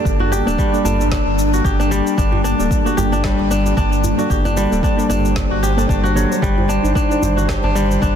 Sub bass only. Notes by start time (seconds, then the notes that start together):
0.05 G1
0.47 D1
0.85 G1
1.27 G1
1.65 G1
2.18 G1
2.59 D1
2.98 G1
3.39 G1
3.77 G1
4.30 G1
4.72 D1
5.10 G1
5.51 G1
5.89 G1
6.42 G1
6.83 G1
7.22 G1
7.63 G1
8.02 G1